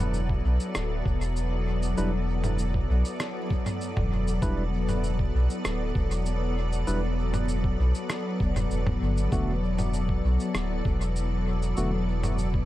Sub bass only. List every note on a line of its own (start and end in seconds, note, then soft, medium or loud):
0.00 0.41 E1 medium
0.45 0.58 B1 medium
0.75 1.02 D1 medium
1.06 1.95 E1 medium
1.98 2.87 E1 medium
2.89 3.03 B1 medium
3.97 4.39 E1 loud
4.42 5.31 E1 medium
5.34 5.48 B1 medium
5.65 5.92 D1 medium
5.95 6.84 E1 medium
6.87 7.76 E1 loud
7.79 7.93 B1 medium
8.40 8.67 E1 medium
8.71 8.98 E1 medium
9.01 9.28 G1 loud
9.32 10.21 E1 loud
10.24 10.38 B1 medium
10.54 10.82 D1 medium
10.85 11.74 E1 medium
11.77 12.65 E1 loud